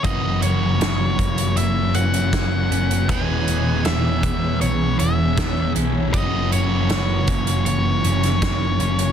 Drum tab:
HH |x-x-x-xxx-xxx-xx|x-x-x-x-x-x-x-x-|x-x-x-xxx-xxx-xx|
SD |----o-------o---|----o-------o---|----o------oo---|
BD |o-----o-----o---|o-----o-----o---|o-----o-----o---|